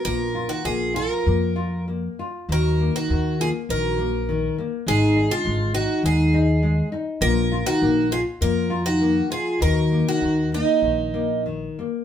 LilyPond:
<<
  \new Staff \with { instrumentName = "Twelve-string acoustic guitar" } { \time 4/4 \key ees \minor \tempo 4 = 100 bes'8. ges'16 aes'8 bes'4. r4 | bes'8. ges'8. aes'8 bes'4. r8 | aes'8. f'8. ges'8 aes'4. r8 | bes'8. ges'8. aes'8 bes'8. ges'8. aes'8 |
bes'8. ges'8. ees'4. r4 | }
  \new Staff \with { instrumentName = "Soft synth lead" } { \time 4/4 \key ees \minor f'8. ees'16 f'8 f'4. r4 | ges'8. ees'8. f'8 ges'4. r8 | ees'8. d'8. ees'8 ees'4. r8 | f'8. ees'8. f'8 f'8. ees'8. f'8 |
ges'8. ees'8. bes4. r4 | }
  \new Staff \with { instrumentName = "Nylon-string guitar" } { \time 4/4 \key ees \minor bes8 f'8 bes8 f'8 bes8 f'8 bes8 f'8 | ees8 bes8 ees8 bes8 ees8 bes8 ees8 bes8 | aes8 ees'8 aes8 ees'8 aes8 ees'8 aes8 ees'8 | bes8 f'8 bes8 f'8 bes8 f'8 bes8 f'8 |
ees8 bes8 ees8 bes8 ees8 bes8 ees8 bes8 | }
  \new Staff \with { instrumentName = "Upright bass" } { \clef bass \time 4/4 \key ees \minor bes,,4 bes,,4 f,2 | ees,4 ees,4 bes,,2 | aes,,4 aes,,4 ees,2 | bes,,4 bes,,4 f,2 |
ees,4 ees,4 bes,,2 | }
>>